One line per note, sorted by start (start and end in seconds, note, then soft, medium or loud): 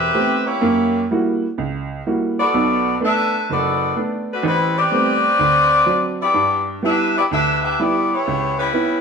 0.00 0.47 C4 loud
0.00 0.45 G4 loud
0.00 0.47 B4 loud
0.00 0.47 E5 loud
0.14 0.48 A3 medium
0.14 0.48 B3 soft
0.14 0.48 C4 soft
0.14 0.48 G4 medium
0.46 1.06 A#3 medium
0.46 1.06 E4 medium
0.46 1.06 G4 medium
0.46 1.06 C#5 medium
0.61 1.03 F#2 medium
0.61 1.03 A#3 medium
1.11 1.44 G3 medium
1.11 1.44 A#3 medium
1.11 1.45 E4 medium
1.11 1.45 F#4 medium
1.58 1.99 C#2 medium
2.07 2.40 G3 soft
2.07 2.40 A#3 soft
2.07 2.40 E4 soft
2.07 2.40 F#4 soft
2.39 2.98 B3 medium
2.39 2.98 F#4 medium
2.39 2.98 A4 medium
2.39 2.98 D5 loud
2.54 2.95 B1 medium
2.54 2.95 B2 medium
3.01 3.35 A3 medium
3.01 3.35 B3 medium
3.01 3.35 D4 medium
3.01 3.47 A4 medium
3.01 3.47 B4 medium
3.01 3.47 E5 loud
3.05 3.47 D4 medium
3.50 3.91 F#1 medium
3.50 3.98 B3 medium
3.50 3.98 F#4 medium
3.50 3.98 A4 medium
3.50 3.98 D5 loud
3.96 4.30 A3 soft
3.96 4.30 B3 soft
3.96 4.30 D4 medium
4.33 4.46 A3 medium
4.33 4.46 D4 medium
4.33 4.45 F#4 medium
4.33 4.45 B4 medium
4.43 4.85 A1 medium
4.43 4.76 G3 loud
4.43 4.76 C4 medium
4.48 4.76 E4 loud
4.48 4.76 B4 loud
4.78 6.16 C4 loud
4.78 5.37 G4 loud
4.78 6.17 B4 loud
4.78 6.16 D5 loud
4.92 5.26 G3 medium
4.92 5.26 A3 medium
4.92 5.26 B3 medium
4.92 5.26 C4 medium
5.39 5.81 D2 medium
5.86 6.21 F#3 soft
5.86 6.21 C4 soft
5.86 6.21 D4 medium
6.22 6.65 B3 medium
6.22 6.65 E4 medium
6.22 6.65 G4 medium
6.22 6.65 D5 medium
6.34 6.76 G2 medium
6.83 7.16 G3 medium
6.83 7.17 B3 medium
6.83 7.14 D4 medium
6.83 7.17 E4 medium
6.83 7.14 G4 medium
6.83 7.14 B4 loud
6.83 7.14 E5 loud
7.18 7.24 B3 medium
7.18 7.24 E4 medium
7.18 7.24 G4 medium
7.18 7.25 D5 loud
7.31 7.72 D2 medium
7.31 7.62 D4 loud
7.31 7.62 G4 loud
7.31 7.62 B4 loud
7.31 7.62 E5 loud
7.64 7.78 D4 medium
7.64 7.78 G4 medium
7.64 7.78 B4 medium
7.64 7.78 E5 loud
7.79 8.13 G3 medium
7.79 8.13 B3 soft
7.79 8.12 B3 medium
7.79 8.12 E4 medium
7.79 8.13 E4 medium
7.79 8.12 G4 medium
7.79 8.12 D5 loud
8.13 8.59 B3 medium
8.13 8.59 E4 medium
8.13 8.59 G4 medium
8.13 8.59 C#5 loud
8.27 8.68 C#2 medium
8.59 9.01 G3 medium
8.59 9.01 C#4 medium
8.59 9.01 E4 medium
8.59 9.01 B4 loud
8.73 9.01 B3 medium
8.73 9.01 C#4 medium
8.73 9.01 E4 medium